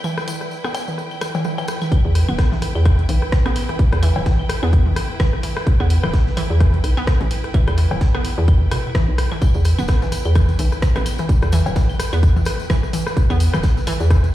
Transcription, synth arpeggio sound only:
0.04 0.08 E3 loud
0.28 0.31 E3 medium
0.64 0.67 B3 loud
0.88 0.90 E3 medium
1.21 1.25 E3 medium
1.35 1.38 E3 loud
1.45 1.49 E3 loud
1.58 1.60 E3 loud
1.82 1.84 E3 medium
1.92 1.95 E3 medium
2.29 2.31 B3 loud
2.52 2.54 E3 medium
2.85 2.89 E3 loud
3.09 3.13 E3 medium
3.46 3.48 B3 loud
3.69 3.71 E3 medium
4.03 4.06 E3 loud
4.26 4.30 E3 medium
4.63 4.66 B3 loud
4.86 4.88 E3 medium
5.20 5.23 E3 loud
5.43 5.47 E3 medium
5.80 5.83 B3 loud
6.03 6.05 E3 medium
6.37 6.41 E3 loud
6.60 6.64 E3 medium
6.97 7.00 B3 loud
7.21 7.23 E3 medium
7.54 7.58 E3 loud
7.78 7.81 E3 medium
8.14 8.17 B3 loud
8.38 8.40 E3 medium
8.71 8.75 B2 medium
8.95 9.00 E3 loud
9.32 9.34 E3 medium
9.42 9.45 E3 medium
9.79 9.81 B3 loud
10.02 10.04 E3 medium
10.36 10.39 E3 loud
10.59 10.63 E3 medium
10.96 10.98 B3 loud
11.19 11.21 E3 medium
11.53 11.56 E3 loud
11.76 11.80 E3 medium
12.13 12.16 B3 loud
12.36 12.38 E3 medium
12.70 12.74 E3 loud
12.93 12.97 E3 medium
13.30 13.33 B3 loud
13.54 13.56 E3 medium
13.87 13.91 E3 loud
14.10 14.14 E3 medium

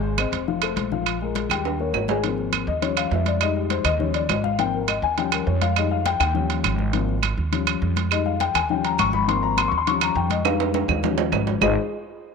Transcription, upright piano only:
0.00 0.13 G#3 medium
0.00 0.13 G#4 medium
0.00 0.13 G#5 medium
0.19 0.42 C4 medium
0.19 0.43 C5 medium
0.19 0.43 D#5 medium
0.48 0.60 F3 medium
0.48 0.60 F4 medium
0.48 0.60 F5 medium
0.63 0.87 A3 medium
0.63 0.87 A4 medium
0.63 0.87 C5 medium
0.92 1.16 F3 medium
0.92 1.16 F4 medium
0.92 1.16 F5 medium
1.22 1.45 G#3 medium
1.22 1.46 G#4 medium
1.22 1.46 A#4 medium
1.50 1.74 G3 medium
1.50 1.75 G4 medium
1.50 1.75 G5 medium
1.80 2.04 A#3 medium
1.80 2.04 A#4 medium
1.80 2.04 C#5 medium
2.10 2.22 G#3 medium
2.10 2.22 G#4 medium
2.10 2.22 G#5 medium
2.24 2.66 F3 medium
2.24 2.66 A#3 medium
2.24 2.66 C4 medium
2.68 2.82 D#5 medium
2.82 3.38 F3 medium
2.82 3.38 G3 soft
2.82 3.38 C#4 medium
2.82 2.97 C#5 medium
2.97 3.12 F5 loud
3.13 3.26 E5 medium
3.28 3.41 D5 medium
3.41 3.83 G3 medium
3.41 3.83 G#3 soft
3.41 3.84 D#4 medium
3.41 3.56 D#5 medium
3.56 3.70 G4 medium
3.71 3.85 C5 medium
3.85 3.99 D#5 loud
3.99 4.19 F3 medium
3.99 4.20 G3 soft
3.99 4.20 C#4 medium
3.99 4.14 C#5 medium
4.15 4.29 D5 medium
4.30 4.44 D#5 medium
4.44 4.58 F5 loud
4.58 4.78 F3 medium
4.58 4.78 A#3 medium
4.58 4.79 C4 medium
4.58 4.73 G5 medium
4.74 4.88 A#4 medium
4.88 5.03 D#5 medium
5.03 5.17 G#5 loud
5.18 5.60 F3 medium
5.18 5.60 G3 medium
5.18 5.60 C#4 medium
5.18 5.32 G5 medium
5.32 5.47 A#4 medium
5.47 5.61 C#5 medium
5.62 5.76 F5 medium
5.76 5.96 G3 medium
5.76 5.96 G#3 soft
5.76 5.97 D#4 medium
5.76 5.91 D#5 medium
5.91 6.05 F5 medium
6.06 6.19 G5 medium
6.20 6.48 G5 medium
6.34 6.76 F3 medium
6.34 6.77 G3 medium
6.34 6.77 C#4 medium
6.93 7.13 F3 medium
6.93 7.13 A#3 medium
6.93 7.14 C4 medium
7.52 7.94 F3 medium
7.52 7.94 G3 medium
7.52 7.95 C#4 medium
8.11 8.30 G3 medium
8.11 8.31 G#3 medium
8.11 8.31 D#4 medium
8.11 8.26 D#5 medium
8.26 8.40 F5 medium
8.41 8.55 G5 medium
8.55 8.69 G#5 loud
8.70 9.25 F3 medium
8.70 9.26 G3 medium
8.70 9.26 C#4 medium
8.70 8.84 G5 medium
8.84 8.99 A#5 medium
9.00 9.13 C#6 loud
9.13 9.28 B5 loud
9.27 9.69 F3 medium
9.27 9.70 A#3 medium
9.27 9.70 C4 medium
9.27 9.43 C6 loud
9.43 9.57 A#5 loud
9.58 9.67 C6 medium
9.68 9.77 C#6 loud
9.78 9.87 C6 medium
9.87 10.29 F3 medium
9.87 10.29 G3 medium
9.87 10.29 C#4 medium
9.87 10.01 C#6 medium
10.02 10.16 A#5 loud
10.17 10.30 G5 medium
10.31 10.45 D#5 medium
10.45 11.00 G3 medium
10.45 11.01 G#3 medium
10.45 11.01 D#4 medium
10.45 11.00 F5 medium
11.04 11.59 F3 medium
11.04 11.60 G3 medium
11.04 11.60 C#4 medium
11.62 11.75 G#3 medium
11.62 11.75 D#4 medium
11.62 11.76 F4 medium
11.62 11.76 G#4 medium
11.62 11.76 C5 medium
11.62 11.76 D#5 loud

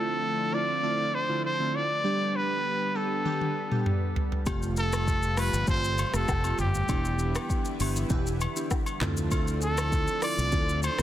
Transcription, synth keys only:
0.00 0.46 D3 loud
0.00 0.46 A3 medium
0.00 0.46 C4 medium
0.00 0.46 E4 medium
0.00 0.46 F4 loud
0.53 0.81 D3 medium
0.53 0.81 A3 medium
0.53 0.81 C4 medium
0.53 0.81 E4 medium
0.53 0.81 F4 medium
0.83 1.04 D3 loud
0.83 1.04 A3 medium
0.83 1.04 C4 medium
0.83 1.04 E4 medium
0.83 1.05 F4 loud
1.29 1.50 D3 medium
1.29 1.50 A3 medium
1.29 1.50 C4 medium
1.29 1.50 E4 medium
1.29 1.50 F4 medium
1.59 1.80 D3 medium
1.59 1.80 A3 medium
1.59 1.80 C4 medium
1.59 1.80 E4 medium
1.59 1.80 F4 medium
2.04 2.88 G3 loud
2.04 2.88 B3 medium
2.04 2.88 D4 medium
2.04 2.88 G4 loud
2.95 3.23 G3 medium
2.95 3.23 B3 medium
2.95 3.23 D4 medium
2.95 3.23 G4 medium
3.25 3.47 G3 loud
3.25 3.47 B3 medium
3.25 3.47 D4 medium
3.25 3.47 G4 loud
3.71 3.92 G3 medium
3.71 3.92 B3 medium
3.71 3.92 D4 medium
3.71 3.92 G4 medium
4.46 5.30 A3 loud
4.46 5.30 C4 medium
4.46 5.31 F4 medium
4.46 5.31 G4 loud
5.37 5.65 A3 medium
5.37 5.65 C4 medium
5.37 5.66 F4 medium
5.37 5.66 G4 medium
5.67 5.89 A3 medium
5.67 5.89 C4 medium
5.67 5.89 F4 medium
5.67 5.89 G4 loud
6.14 6.34 A3 medium
6.14 6.35 C4 medium
6.14 6.35 F4 medium
6.14 6.35 G4 medium
6.44 6.65 A3 medium
6.44 6.65 C4 medium
6.44 6.65 F4 medium
6.44 6.65 G4 medium
6.89 7.73 B3 loud
6.89 7.73 D4 medium
6.89 7.73 E4 medium
6.89 7.73 G4 loud
7.80 8.08 B3 medium
7.80 8.08 D4 medium
7.80 8.08 E4 medium
7.80 8.08 G4 medium
8.10 8.32 B3 loud
8.10 8.32 D4 medium
8.10 8.32 E4 medium
8.10 8.32 G4 loud
8.56 8.77 B3 medium
8.56 8.77 D4 medium
8.56 8.77 E4 medium
8.56 8.77 G4 medium
9.01 9.29 C4 medium
9.01 9.29 E4 medium
9.01 9.29 F4 medium
9.01 9.29 A4 loud
9.31 10.15 C4 loud
9.31 10.15 E4 medium
9.31 10.15 F4 medium
9.31 10.15 A4 loud
10.22 10.50 C4 medium
10.22 10.50 E4 medium
10.22 10.50 F4 medium
10.22 10.51 A4 medium
10.52 10.74 C4 loud
10.52 10.74 E4 medium
10.52 10.74 F4 medium
10.52 10.74 A4 loud
10.98 11.02 C4 medium
10.98 11.02 E4 medium
10.98 11.02 F4 medium
10.98 11.02 A4 medium

